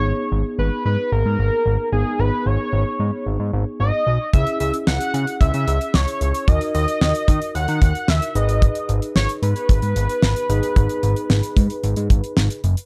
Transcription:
<<
  \new Staff \with { instrumentName = "Analog synth lead" } { \time 4/4 \key gis \minor \tempo 4 = 112 cis''8 r8 b'8 b'8 ais'4. gis'8 | b'8 cis''4. r4 dis''4 | e''8 e''8 fis''4 e''4 cis''4 | dis''8 dis''8 dis''4 fis''4 e''8 dis''8~ |
dis''8 r8 cis''8 b'2~ b'8~ | b'2. r4 | }
  \new Staff \with { instrumentName = "Tine electric piano" } { \time 4/4 \key gis \minor <b dis' gis'>2.~ <b dis' gis'>8 <b dis' gis'>8~ | <b dis' gis'>2.~ <b dis' gis'>8 r8 | <cis' e' gis'>1 | <dis' fis' ais'>2.~ <dis' fis' ais'>8 <dis' gis' b'>8~ |
<dis' gis' b'>2.~ <dis' gis' b'>8 <dis' gis' b'>8~ | <dis' gis' b'>2.~ <dis' gis' b'>8 r8 | }
  \new Staff \with { instrumentName = "Analog synth bass" } { \clef bass \time 4/4 \key gis \minor gis,,16 r16 gis,,16 r16 gis,,16 r16 gis,16 r16 gis,,16 gis,16 gis,,16 r16 gis,,16 r16 gis,,16 r16 | gis,,16 r16 gis,,16 r16 gis,,16 r16 gis,16 r16 gis,,16 gis,16 gis,,16 r16 gis,,16 r16 b,,16 r16 | cis,16 r16 cis,16 r16 cis,16 r16 cis16 r16 cis,16 cis16 cis,16 r16 cis,16 r16 cis,16 r16 | dis,16 r16 dis,16 r16 dis,16 r16 dis16 r16 dis,16 dis16 dis,16 r16 dis,16 r16 gis,,8~ |
gis,,16 r16 gis,,16 r16 gis,,16 r16 gis,16 r16 gis,,16 gis,16 gis,,16 r16 gis,,16 r16 gis,,16 r16 | gis,,16 r16 gis,,16 r16 gis,,16 r16 gis,16 r16 gis,,16 gis,16 gis,,16 r16 gis,,16 r16 fis,,16 r16 | }
  \new DrumStaff \with { instrumentName = "Drums" } \drummode { \time 4/4 r4 r4 r4 r4 | r4 r4 r4 r4 | <hh bd>16 hh16 hh16 hh16 sn16 hh16 hh16 hh16 <hh bd>16 hh16 hh16 hh16 sn16 hh16 hh16 hh16 | <hh bd>16 hh16 hh16 hh16 sn16 hh16 <hh bd>16 hh16 hh16 hh16 <hh bd>16 hh16 sn16 hh16 hh16 hh16 |
<hh bd>16 hh16 hh16 hh16 sn16 hh16 hh16 hh16 <hh bd>16 hh16 hh16 hh16 sn16 hh16 hh16 hh16 | <hh bd>16 hh16 hh16 hh16 sn16 hh16 <hh bd>16 hh16 hh16 hh16 <hh bd>16 hh16 sn16 hh16 hh16 hh16 | }
>>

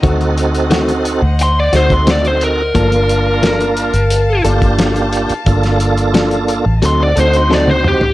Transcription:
<<
  \new Staff \with { instrumentName = "String section" } { \time 4/4 \key g \minor \tempo 4 = 88 <c'' ees'' fis''>1 | <f'' a''>1~ | <f'' a''>2 <c'' ees'' fis''>2 | }
  \new Staff \with { instrumentName = "Lead electric guitar" } { \time 4/4 \key g \minor r2 c'''16 d''16 c''16 c'''16 d''16 c''16 bes'8~ | bes'2~ bes'8 r4. | r2 c'''16 d''16 c''16 c'''16 d''16 c''16 g'8 | }
  \new Staff \with { instrumentName = "Tonewheel organ" } { \time 4/4 \key g \minor <c' ees' fis' a'>4.~ <c' ees' fis' a'>16 r8. <c' ees' fis' a'>4. | <bes d' f' bes'>4.~ <bes d' f' bes'>16 r8. <bes d' f' g'>4. | <bes d' f' a'>4.~ <bes d' f' a'>16 r16 <c' ees' fis' a'>8 <c' ees' fis' c''>4. | }
  \new Staff \with { instrumentName = "Clean electric guitar" } { \time 4/4 \key g \minor <ees a c' fis'>8 r8 <ees a c' fis'>8 r4 <a c' fis'>8 <ees a c' fis'>8 r8 | <f bes d' a'>8 r8 <f bes d' a'>8 r4 <bes d' a'>8 <f bes d' a'>8 r8 | r4 <f bes d' a'>8 r8 <fis c' ees' a'>8 <c' ees' a'>8 <fis c' ees' a'>8 r8 | }
  \new Staff \with { instrumentName = "Fingered electric bass" } { \clef bass \time 4/4 \key g \minor d,4.~ d,16 d,8. d,4. | g,,4.~ g,,16 g,,8. g,,4~ g,,16 r16 | g,,4.~ g,,16 a,,16 d,8 d,4. | }
  \new DrumStaff \with { instrumentName = "Drums" } \drummode { \time 4/4 <hh bd>16 hh16 hh16 hh16 <hh sn>16 hh16 hh8 hh8 <hh sn>16 <hh bd>16 <hh sn>16 hh16 hh8 | <hh bd>16 hh16 hh8 <hh sn>16 hh16 hh16 hh16 hh8 hh16 <hh bd>16 <hh sn>16 hh16 hh16 hh16 | <hh bd>16 <hh sn>16 hh16 hh16 <hh sn>16 hh16 hh8 hh8 hh16 hh16 sn16 tommh16 toml16 tomfh16 | }
>>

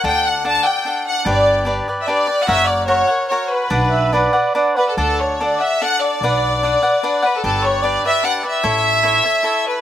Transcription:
<<
  \new Staff \with { instrumentName = "Trumpet" } { \time 3/4 \key b \minor \tempo 4 = 147 r2. | r2. | r2. | r8 e''8 d''4 d''8 b'8 |
\key d \major r2. | r2. | r2. | r2. | }
  \new Staff \with { instrumentName = "Violin section" } { \time 3/4 \key b \minor g''8 fis''8 a''8 g''4 fis''8 | d''4 \tuplet 3/2 { r4 r16 e''16 } d''8.~ d''32 fis''32 | e''8 d''8 cis''4 cis''8 b'8~ | b'2 r8 b'16 a'16 |
\key d \major a'8 cis''8 d''8 e''8 fis''8 d''8~ | d''2~ d''8 b'16 a'16 | a'8 cis''8 d''8 e''8 \tuplet 3/2 { fis''8 fis''16 e''8.~ } | e''2~ e''8 b'16 r16 | }
  \new Staff \with { instrumentName = "Cavaquinho" } { \time 3/4 \key b \minor <d' a' d'' fis''>4 <d' a' d'' fis''>8 <a' d'' fis''>8 <d' a' d'' fis''>4 | <d' g' b' d''>4 <d' g' b' d''>8 <g' b' d''>8 <d' g' b' d''>8 <g' b' d''>8 | <fis' ais' cis'' fis''>4 <fis' ais' cis'' fis''>8 <ais' cis'' fis''>8 <fis' ais' cis'' fis''>4 | <d' b' d'' fis''>4 <d' b' d'' fis''>8 <b' d'' fis''>8 <d' b' d'' fis''>8 <b' d'' fis''>8 |
\key d \major <d' a' d'' fis''>4 <d' a' d'' fis''>8 <a' d'' fis''>8 <d' a' d'' fis''>4 | <d' b' d'' fis''>4 <d' b' d'' fis''>8 <b' d'' fis''>8 <d' b' d'' fis''>8 <b' d'' fis''>8 | <d' g' b' d''>4 <d' g' b' d''>8 <g' b' d''>8 <d' g' b' d''>8 <g' b' d''>8 | <e' a' cis'' e''>4 <e' a' cis'' e''>8 <a' cis'' e''>8 <e' a' cis'' e''>4 | }
  \new Staff \with { instrumentName = "Upright bass" } { \clef bass \time 3/4 \key b \minor d,2 r4 | g,,2 r4 | fis,,2 r4 | b,,2 r4 |
\key d \major d,2 r4 | b,,2 r4 | g,,2 r4 | a,,2 r4 | }
>>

